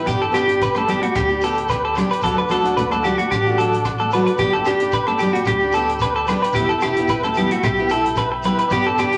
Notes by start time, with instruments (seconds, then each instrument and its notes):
Already playing: transistor combo organ G5 B5
0.06 upright bass G1, steel-string acoustic guitar B3 D4 G4, clean electric guitar G4, transistor combo organ D5, kick, closed hi-hat, shekere
0.22 clean electric guitar A4
0.32 upright bass G1, steel-string acoustic guitar B3 D4 G4, clean electric guitar G4, cross-stick, closed hi-hat, shekere
0.48 steel-string acoustic guitar D4 G4, closed hi-hat, shekere
0.61 clean electric guitar B4, kick, closed hi-hat, shekere
0.75 clean electric guitar A4, cross-stick, high conga
0.87 steel-string acoustic guitar B3 D4 G4, clean electric guitar G4, closed hi-hat, low conga, shekere
1.02 clean electric guitar F#4, closed hi-hat, high conga
1.15 upright bass D2, clean electric guitar G4, kick, cross-stick, closed hi-hat, shekere
1.29 steel-string acoustic guitar D4 G4, shekere
1.41 steel-string acoustic guitar B3 D4 G4, clean electric guitar A4, closed hi-hat, shekere
1.54 closed hi-hat, shekere
1.68 clean electric guitar B4, kick, cross-stick, closed hi-hat, shekere
1.85 clean electric guitar A4
1.95 steel-string acoustic guitar B3 D4 G4, muted clean electric guitar stroke, cross-stick, closed hi-hat, low conga, shekere
2.11 clean electric guitar B4, closed hi-hat
2.21 upright bass D2, steel-string acoustic guitar F#3 A3 D4 F#4, clean electric guitar A4, transistor combo organ F#5 A5, kick, closed hi-hat, shekere
2.38 clean electric guitar B4
2.49 upright bass D2, steel-string acoustic guitar F#3 A3 D4 F#4, clean electric guitar A4, cross-stick, closed hi-hat, high conga, shekere
2.64 steel-string acoustic guitar A3 D4 F#4, closed hi-hat, shekere
2.77 clean electric guitar B4, kick, closed hi-hat, high conga, shekere
2.91 clean electric guitar A4, cross-stick, high conga, shekere
3.03 steel-string acoustic guitar F#3 A3 D4 F#4, clean electric guitar G4, closed hi-hat, low conga, shekere
3.18 clean electric guitar F#4, closed hi-hat, high conga, shekere
3.31 upright bass A1, clean electric guitar G4, kick, cross-stick, closed hi-hat, shekere
3.46 steel-string acoustic guitar A3 D4 F#4, shekere
3.58 steel-string acoustic guitar F#3 A3 D4 F#4, clean electric guitar A4, closed hi-hat, shekere
3.72 closed hi-hat, shekere
3.85 kick, cross-stick, closed hi-hat, shekere
3.98 clean electric guitar A4, high conga, shekere
4.11 steel-string acoustic guitar F#3 A3 D4 F#4, clean electric guitar B4, closed hi-hat, low conga, shekere
4.25 clean electric guitar B4, closed hi-hat, shekere
4.38 upright bass G1, steel-string acoustic guitar B3 D4 G4, clean electric guitar G4, transistor combo organ G5 B5, kick, closed hi-hat, shekere
4.53 clean electric guitar A4
4.65 upright bass G1, steel-string acoustic guitar B3 D4 G4, clean electric guitar G4, cross-stick, closed hi-hat, shekere
4.80 steel-string acoustic guitar D4 G4, closed hi-hat, shekere
4.92 clean electric guitar B4, kick, closed hi-hat, shekere
5.07 clean electric guitar A4, cross-stick, high conga
5.19 steel-string acoustic guitar B3 D4, clean electric guitar G4, closed hi-hat, low conga, shekere
5.23 steel-string acoustic guitar G4
5.33 clean electric guitar F#4, closed hi-hat, high conga
5.45 upright bass D2, clean electric guitar G4, kick, cross-stick, closed hi-hat, shekere
5.60 steel-string acoustic guitar G4, shekere
5.64 steel-string acoustic guitar D4
5.72 steel-string acoustic guitar B3, clean electric guitar A4, closed hi-hat, shekere
5.76 steel-string acoustic guitar D4 G4
5.87 closed hi-hat, shekere
5.99 clean electric guitar B4, kick, cross-stick, closed hi-hat, shekere
6.16 clean electric guitar A4
6.27 steel-string acoustic guitar B3 D4, clean electric guitar B4, cross-stick, closed hi-hat, low conga, shekere
6.31 steel-string acoustic guitar G4
6.43 clean electric guitar B4, closed hi-hat
6.53 upright bass E1, steel-string acoustic guitar E3 B3 E4, clean electric guitar G4, kick, closed hi-hat, shekere
6.57 steel-string acoustic guitar G4, transistor combo organ E5
6.69 clean electric guitar A4
6.80 upright bass E1, steel-string acoustic guitar B3 E4 G4, clean electric guitar G4, muted steel-string acoustic guitar stroke, cross-stick, closed hi-hat, shekere
6.94 steel-string acoustic guitar E4 G4, closed hi-hat, shekere
6.99 steel-string acoustic guitar B3
7.07 clean electric guitar B4, kick, closed hi-hat, shekere
7.23 clean electric guitar A4, cross-stick, high conga
7.34 steel-string acoustic guitar E3, clean electric guitar G4, closed hi-hat, low conga, shekere
7.38 steel-string acoustic guitar B3 E4 G4
7.51 clean electric guitar F#4, closed hi-hat, high conga
7.63 upright bass B1, clean electric guitar G4, kick, cross-stick, closed hi-hat, shekere
7.77 steel-string acoustic guitar E4 G4, shekere
7.81 steel-string acoustic guitar B3
7.89 steel-string acoustic guitar E3 B3 E4, clean electric guitar A4, closed hi-hat, shekere
7.93 steel-string acoustic guitar G4
8.04 closed hi-hat, shekere
8.16 clean electric guitar B4, kick, cross-stick, closed hi-hat, shekere
8.32 muted clean electric guitar stroke
8.43 steel-string acoustic guitar E3 B3 E4, clean electric guitar B4, closed hi-hat, low conga, shekere
8.47 steel-string acoustic guitar G4
8.58 clean electric guitar B4, closed hi-hat
8.68 upright bass G1, steel-string acoustic guitar B3, transistor combo organ D5, kick, closed hi-hat, shekere
8.72 steel-string acoustic guitar D4 G4, clean electric guitar G4
8.87 clean electric guitar A4
8.98 upright bass G1, steel-string acoustic guitar B3 D4 G4, clean electric guitar G4, cross-stick, closed hi-hat, shekere
9.12 steel-string acoustic guitar G4, closed hi-hat, shekere